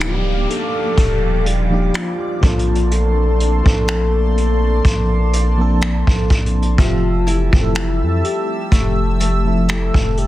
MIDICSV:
0, 0, Header, 1, 8, 480
1, 0, Start_track
1, 0, Tempo, 967742
1, 1444, Time_signature, 4, 2, 24, 8
1, 5095, End_track
2, 0, Start_track
2, 0, Title_t, "Analog synth pad"
2, 0, Program_c, 0, 89
2, 0, Note_on_c, 0, 67, 73
2, 0, Note_on_c, 0, 74, 70
2, 0, Note_on_c, 0, 77, 66
2, 0, Note_on_c, 0, 86, 82
2, 1187, Note_off_c, 0, 67, 0
2, 1187, Note_off_c, 0, 77, 0
2, 1187, Note_off_c, 0, 86, 0
2, 1188, Note_off_c, 0, 74, 0
2, 1204, Note_on_c, 0, 74, 71
2, 1204, Note_on_c, 0, 81, 69
2, 1204, Note_on_c, 0, 84, 81
2, 1205, Note_on_c, 0, 58, 76
2, 3344, Note_off_c, 0, 58, 0
2, 3344, Note_off_c, 0, 74, 0
2, 3344, Note_off_c, 0, 84, 0
2, 3363, Note_on_c, 0, 67, 80
2, 3363, Note_on_c, 0, 76, 66
2, 3363, Note_on_c, 0, 88, 85
2, 5095, Note_off_c, 0, 67, 0
2, 5095, Note_off_c, 0, 76, 0
2, 5095, Note_off_c, 0, 81, 0
2, 5095, Note_off_c, 0, 88, 0
2, 5095, End_track
3, 0, Start_track
3, 0, Title_t, "Soft synth lead"
3, 0, Program_c, 1, 80
3, 7, Note_on_c, 1, 67, 105
3, 247, Note_on_c, 1, 69, 119
3, 254, Note_off_c, 1, 67, 0
3, 728, Note_on_c, 1, 67, 95
3, 735, Note_off_c, 1, 69, 0
3, 969, Note_on_c, 1, 65, 102
3, 976, Note_off_c, 1, 67, 0
3, 1206, Note_off_c, 1, 65, 0
3, 1208, Note_on_c, 1, 65, 98
3, 1449, Note_on_c, 1, 69, 107
3, 1457, Note_off_c, 1, 65, 0
3, 3126, Note_off_c, 1, 69, 0
3, 3368, Note_on_c, 1, 65, 95
3, 3607, Note_on_c, 1, 64, 98
3, 3615, Note_off_c, 1, 65, 0
3, 4088, Note_on_c, 1, 67, 113
3, 4095, Note_off_c, 1, 64, 0
3, 4566, Note_off_c, 1, 67, 0
3, 4810, Note_on_c, 1, 69, 94
3, 5050, Note_on_c, 1, 67, 92
3, 5057, Note_off_c, 1, 69, 0
3, 5095, Note_off_c, 1, 67, 0
3, 5095, End_track
4, 0, Start_track
4, 0, Title_t, "FM electric piano"
4, 0, Program_c, 2, 5
4, 0, Control_c, 2, 64, 127
4, 0, Note_on_c, 2, 53, 78
4, 0, Note_on_c, 2, 58, 69
4, 0, Note_on_c, 2, 62, 68
4, 0, Note_on_c, 2, 63, 70
4, 0, Note_on_c, 2, 67, 88
4, 510, Note_off_c, 2, 53, 0
4, 513, Note_off_c, 2, 58, 0
4, 515, Note_off_c, 2, 62, 0
4, 517, Note_off_c, 2, 63, 0
4, 520, Note_off_c, 2, 67, 0
4, 844, Note_on_c, 2, 53, 78
4, 849, Note_on_c, 2, 58, 69
4, 853, Note_on_c, 2, 62, 70
4, 859, Note_on_c, 2, 63, 71
4, 863, Note_on_c, 2, 67, 84
4, 1189, Note_off_c, 2, 53, 0
4, 1193, Note_off_c, 2, 58, 0
4, 1195, Note_on_c, 2, 53, 75
4, 1199, Note_on_c, 2, 58, 73
4, 1204, Note_off_c, 2, 62, 0
4, 1204, Note_on_c, 2, 60, 69
4, 1206, Note_off_c, 2, 63, 0
4, 1209, Note_off_c, 2, 67, 0
4, 1209, Note_on_c, 2, 62, 71
4, 1210, Control_c, 2, 64, 0
4, 1214, Note_on_c, 2, 69, 82
4, 1298, Control_c, 2, 64, 127
4, 1679, Note_off_c, 2, 53, 0
4, 1682, Note_off_c, 2, 58, 0
4, 1684, Note_off_c, 2, 60, 0
4, 1686, Note_off_c, 2, 62, 0
4, 1689, Note_off_c, 2, 69, 0
4, 1802, Note_on_c, 2, 53, 76
4, 1808, Note_on_c, 2, 58, 71
4, 1813, Note_on_c, 2, 60, 71
4, 1817, Note_on_c, 2, 62, 73
4, 1822, Note_on_c, 2, 69, 87
4, 2430, Note_off_c, 2, 53, 0
4, 2433, Note_off_c, 2, 58, 0
4, 2435, Note_off_c, 2, 60, 0
4, 2438, Note_off_c, 2, 62, 0
4, 2440, Note_off_c, 2, 69, 0
4, 2764, Note_on_c, 2, 53, 88
4, 2769, Note_on_c, 2, 58, 87
4, 2774, Note_on_c, 2, 60, 82
4, 2779, Note_on_c, 2, 62, 85
4, 2784, Note_on_c, 2, 69, 100
4, 3155, Note_off_c, 2, 53, 0
4, 3158, Note_off_c, 2, 58, 0
4, 3160, Note_off_c, 2, 60, 0
4, 3163, Note_off_c, 2, 62, 0
4, 3165, Note_off_c, 2, 69, 0
4, 3355, Note_on_c, 2, 53, 75
4, 3360, Note_on_c, 2, 57, 69
4, 3365, Note_on_c, 2, 60, 66
4, 3369, Note_on_c, 2, 76, 70
4, 3371, Control_c, 2, 64, 0
4, 3375, Note_on_c, 2, 67, 82
4, 3463, Control_c, 2, 64, 127
4, 3596, Note_off_c, 2, 53, 0
4, 3598, Note_off_c, 2, 57, 0
4, 3601, Note_off_c, 2, 60, 0
4, 3603, Note_off_c, 2, 76, 0
4, 3606, Note_off_c, 2, 67, 0
4, 3724, Note_on_c, 2, 53, 76
4, 3729, Note_on_c, 2, 57, 73
4, 3734, Note_on_c, 2, 60, 73
4, 3738, Note_on_c, 2, 64, 70
4, 3743, Note_on_c, 2, 67, 69
4, 3768, Note_off_c, 2, 67, 0
4, 3776, Note_on_c, 2, 69, 85
4, 4351, Note_off_c, 2, 53, 0
4, 4353, Note_off_c, 2, 57, 0
4, 4356, Note_off_c, 2, 60, 0
4, 4358, Note_off_c, 2, 64, 0
4, 4377, Note_off_c, 2, 69, 0
4, 4683, Note_on_c, 2, 53, 81
4, 4688, Note_on_c, 2, 57, 68
4, 4693, Note_on_c, 2, 60, 67
4, 4698, Note_on_c, 2, 64, 71
4, 4703, Note_on_c, 2, 69, 83
4, 5075, Note_off_c, 2, 53, 0
4, 5078, Note_off_c, 2, 57, 0
4, 5080, Note_off_c, 2, 60, 0
4, 5082, Note_off_c, 2, 64, 0
4, 5085, Note_off_c, 2, 69, 0
4, 5095, End_track
5, 0, Start_track
5, 0, Title_t, "Nylon-string guitar"
5, 0, Program_c, 3, 24
5, 3365, Note_on_c, 3, 53, 78
5, 3605, Note_on_c, 3, 64, 64
5, 4324, Note_on_c, 3, 57, 69
5, 4557, Note_off_c, 3, 57, 0
5, 4563, Note_on_c, 3, 57, 63
5, 4798, Note_off_c, 3, 57, 0
5, 4801, Note_off_c, 3, 64, 0
5, 4804, Note_on_c, 3, 57, 63
5, 4807, Note_on_c, 3, 64, 63
5, 4810, Note_on_c, 3, 67, 65
5, 5095, Note_off_c, 3, 53, 0
5, 5095, Note_off_c, 3, 57, 0
5, 5095, Note_off_c, 3, 64, 0
5, 5095, Note_off_c, 3, 67, 0
5, 5095, End_track
6, 0, Start_track
6, 0, Title_t, "808-style bass"
6, 0, Program_c, 4, 38
6, 0, Note_on_c, 4, 26, 98
6, 230, Note_off_c, 4, 26, 0
6, 485, Note_on_c, 4, 27, 102
6, 945, Note_off_c, 4, 27, 0
6, 1205, Note_on_c, 4, 34, 100
6, 1794, Note_off_c, 4, 34, 0
6, 1815, Note_on_c, 4, 34, 102
6, 2385, Note_off_c, 4, 34, 0
6, 2405, Note_on_c, 4, 34, 102
6, 2994, Note_off_c, 4, 34, 0
6, 3013, Note_on_c, 4, 34, 99
6, 3119, Note_off_c, 4, 34, 0
6, 3128, Note_on_c, 4, 34, 103
6, 3356, Note_off_c, 4, 34, 0
6, 3365, Note_on_c, 4, 29, 109
6, 3719, Note_off_c, 4, 29, 0
6, 3735, Note_on_c, 4, 29, 104
6, 3977, Note_on_c, 4, 41, 89
6, 3984, Note_off_c, 4, 29, 0
6, 4080, Note_off_c, 4, 41, 0
6, 4326, Note_on_c, 4, 29, 103
6, 4914, Note_off_c, 4, 29, 0
6, 4933, Note_on_c, 4, 29, 98
6, 5095, Note_off_c, 4, 29, 0
6, 5095, End_track
7, 0, Start_track
7, 0, Title_t, "Downlifter"
7, 0, Program_c, 5, 103
7, 0, Note_on_c, 5, 60, 79
7, 3364, Note_off_c, 5, 60, 0
7, 5095, End_track
8, 0, Start_track
8, 0, Title_t, "Drums"
8, 1, Note_on_c, 9, 42, 73
8, 7, Note_on_c, 9, 26, 111
8, 51, Note_off_c, 9, 42, 0
8, 57, Note_off_c, 9, 26, 0
8, 249, Note_on_c, 9, 42, 59
8, 298, Note_off_c, 9, 42, 0
8, 484, Note_on_c, 9, 36, 86
8, 484, Note_on_c, 9, 42, 74
8, 533, Note_off_c, 9, 42, 0
8, 534, Note_off_c, 9, 36, 0
8, 725, Note_on_c, 9, 42, 63
8, 774, Note_off_c, 9, 42, 0
8, 962, Note_on_c, 9, 42, 71
8, 969, Note_on_c, 9, 26, 109
8, 1012, Note_off_c, 9, 42, 0
8, 1019, Note_off_c, 9, 26, 0
8, 1204, Note_on_c, 9, 36, 106
8, 1205, Note_on_c, 9, 42, 52
8, 1254, Note_off_c, 9, 36, 0
8, 1254, Note_off_c, 9, 42, 0
8, 1285, Note_on_c, 9, 42, 55
8, 1334, Note_off_c, 9, 42, 0
8, 1365, Note_on_c, 9, 42, 48
8, 1414, Note_off_c, 9, 42, 0
8, 1445, Note_on_c, 9, 42, 64
8, 1495, Note_off_c, 9, 42, 0
8, 1687, Note_on_c, 9, 42, 70
8, 1737, Note_off_c, 9, 42, 0
8, 1814, Note_on_c, 9, 36, 95
8, 1864, Note_off_c, 9, 36, 0
8, 1922, Note_on_c, 9, 42, 74
8, 1928, Note_on_c, 9, 26, 109
8, 1972, Note_off_c, 9, 42, 0
8, 1978, Note_off_c, 9, 26, 0
8, 2170, Note_on_c, 9, 42, 63
8, 2220, Note_off_c, 9, 42, 0
8, 2404, Note_on_c, 9, 36, 82
8, 2405, Note_on_c, 9, 42, 74
8, 2454, Note_off_c, 9, 36, 0
8, 2454, Note_off_c, 9, 42, 0
8, 2645, Note_on_c, 9, 42, 70
8, 2695, Note_off_c, 9, 42, 0
8, 2883, Note_on_c, 9, 42, 78
8, 2889, Note_on_c, 9, 26, 107
8, 2932, Note_off_c, 9, 42, 0
8, 2939, Note_off_c, 9, 26, 0
8, 3012, Note_on_c, 9, 36, 88
8, 3062, Note_off_c, 9, 36, 0
8, 3124, Note_on_c, 9, 42, 53
8, 3126, Note_on_c, 9, 36, 92
8, 3174, Note_off_c, 9, 42, 0
8, 3176, Note_off_c, 9, 36, 0
8, 3204, Note_on_c, 9, 42, 54
8, 3254, Note_off_c, 9, 42, 0
8, 3285, Note_on_c, 9, 42, 51
8, 3334, Note_off_c, 9, 42, 0
8, 3364, Note_on_c, 9, 36, 108
8, 3365, Note_on_c, 9, 42, 69
8, 3414, Note_off_c, 9, 36, 0
8, 3414, Note_off_c, 9, 42, 0
8, 3607, Note_on_c, 9, 42, 68
8, 3657, Note_off_c, 9, 42, 0
8, 3734, Note_on_c, 9, 36, 93
8, 3783, Note_off_c, 9, 36, 0
8, 3843, Note_on_c, 9, 42, 75
8, 3849, Note_on_c, 9, 26, 109
8, 3892, Note_off_c, 9, 42, 0
8, 3898, Note_off_c, 9, 26, 0
8, 4089, Note_on_c, 9, 42, 60
8, 4139, Note_off_c, 9, 42, 0
8, 4324, Note_on_c, 9, 36, 91
8, 4325, Note_on_c, 9, 42, 70
8, 4374, Note_off_c, 9, 36, 0
8, 4374, Note_off_c, 9, 42, 0
8, 4565, Note_on_c, 9, 42, 72
8, 4614, Note_off_c, 9, 42, 0
8, 4803, Note_on_c, 9, 42, 79
8, 4810, Note_on_c, 9, 26, 112
8, 4853, Note_off_c, 9, 42, 0
8, 4859, Note_off_c, 9, 26, 0
8, 4932, Note_on_c, 9, 36, 90
8, 4982, Note_off_c, 9, 36, 0
8, 5045, Note_on_c, 9, 42, 53
8, 5095, Note_off_c, 9, 42, 0
8, 5095, End_track
0, 0, End_of_file